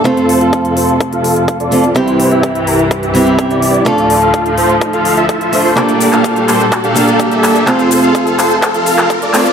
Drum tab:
HH |xxoxxxoxxxoxxxox|xxoxxxoxxxoxxxox|xxoxxxoxxxoxxxoo|xxoxxxoxxxoxxxox|
SH |----------------|----------------|----------------|xxxxxxxxxxxxxxxx|
CP |----------------|----------------|----------------|x--x--x-x-----x-|
BD |o---o---o---o---|o---o---o---o---|o---o---o---o---|o---o---o---o---|

HH |xxoxxxoxxxo-xxox|
SH |xxxxxxxxxxxxxxxx|
CP |x-----x-x--x--x-|
BD |o---o---o---o---|